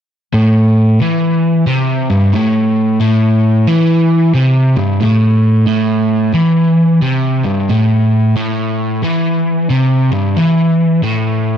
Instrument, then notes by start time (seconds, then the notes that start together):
overdriven electric guitar
0.34 A2
1.01 E3
1.67 C3
2.10 G2
2.34 A2
3.00 A2
3.67 E3
4.34 C3
4.76 G2
5.01 A2
5.67 A2
6.34 E3
7.02 C3
7.45 G2
7.69 A2
8.36 A2
9.04 E3
9.70 C3
10.11 G2
10.37 E3
11.03 A2